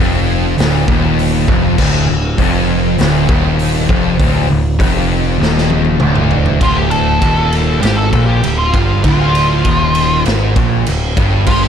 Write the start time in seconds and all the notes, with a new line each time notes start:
Already playing: F1 F2
0.58 D1 D2, snare, open hi-hat
0.88 D#1 D#2, kick
1.19 open hi-hat
1.48 F1 F2, kick
1.78 D1 D2, kick, crash
2.09 D1 D2
2.38 F1 F2, kick, open hi-hat
2.98 D1 D2, snare, open hi-hat
3.29 D#1 D#2, kick
3.59 open hi-hat
3.89 F1 F2, kick
4.19 D1 D2, kick, open hi-hat
4.50 D1 D2
4.79 F1 F2, kick, open hi-hat
5.40 D#1 D#2, snare
5.58 snare
5.70 high tom
5.85 high tom
6.00 D1 D2, mid tom
6.15 mid tom
6.31 floor tom
6.46 floor tom
6.61 D1 D2 F4, kick, ride
6.76 G4
6.90 A4, ride
7.22 D#1 D#2, kick, ride
7.52 ride
7.81 G#1 G#2 G4, snare, ride
7.98 A4
8.13 A#1 A#2, kick, ride
8.26 G4
8.43 D1 D2, ride
8.59 F4
8.74 G1 G2, kick, ride
9.04 D1 D2 F4, kick, ride
9.35 ride
9.65 D#1 D#2, kick, ride
9.95 ride
10.26 G#1 G#2, snare, ride
10.56 A#1 A#2, kick, ride
10.86 D1 D2, ride
11.17 G1 G2, kick, ride
11.46 G1 G2 F4, kick, crash
11.63 G4